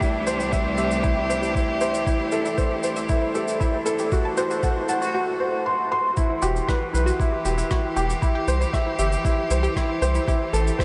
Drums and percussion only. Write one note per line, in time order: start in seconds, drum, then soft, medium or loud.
0.01 kick medium
0.01 shaker soft
0.27 shaker medium
0.40 shaker medium
0.53 kick medium
0.53 shaker medium
0.78 shaker medium
0.91 shaker medium
1.03 kick loud
1.03 shaker soft
1.30 shaker medium
1.43 shaker medium
1.55 kick medium
1.55 shaker soft
1.81 shaker medium
1.94 shaker medium
2.07 kick loud
2.07 shaker soft
2.32 shaker medium
2.45 shaker soft
2.58 kick loud
2.58 shaker soft
2.83 shaker medium
2.96 shaker medium
3.09 kick loud
3.09 shaker soft
3.35 shaker medium
3.48 shaker medium
3.61 kick loud
3.61 shaker soft
3.86 shaker medium
3.99 shaker soft
4.12 kick loud
4.12 shaker soft
4.37 shaker medium
4.51 shaker soft
4.63 kick loud
4.63 shaker medium
4.89 shaker medium
5.02 shaker medium
6.17 kick loud
6.17 shaker soft
6.42 shaker medium
6.56 shaker medium
6.68 kick loud
6.68 cross-stick loud
6.68 shaker soft
6.95 shaker medium
7.07 shaker medium
7.20 kick loud
7.20 shaker medium
7.45 shaker medium
7.58 shaker medium
7.71 kick loud
7.71 cross-stick medium
7.71 shaker soft
7.97 shaker medium
8.10 shaker medium
8.22 kick loud
8.22 shaker medium
8.48 shaker medium
8.61 shaker medium
8.73 kick loud
8.73 cross-stick loud
8.73 shaker medium
8.99 shaker medium
9.12 shaker medium
9.25 kick loud
9.25 shaker soft
9.51 shaker medium
9.64 shaker medium
9.76 kick loud
9.76 cross-stick loud
9.76 shaker soft
10.02 shaker medium
10.15 shaker medium
10.28 kick loud
10.28 shaker soft
10.54 shaker medium
10.67 shaker medium
10.79 kick loud
10.79 cross-stick loud
10.79 shaker medium